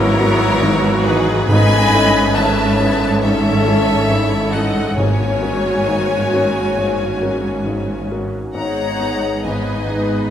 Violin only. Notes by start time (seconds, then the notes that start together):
Already playing: C#5
1.04 B4
1.48 B5
2.34 A5
3.22 E5
4.53 F#5
4.98 G#5
8.55 A#5
9.44 G#5